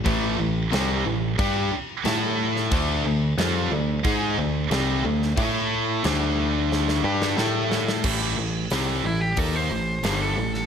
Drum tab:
CC |x---x---x---x---|x---x---x---x---|x---x-----------|x---------------|
HH |----------------|----------------|----------------|----o---o---o---|
SD |----o-------o--o|----o-------o--o|----o---oo-oo-oo|----o-------o--o|
BD |o-------o-------|o-------o-------|o---------------|o-------o-------|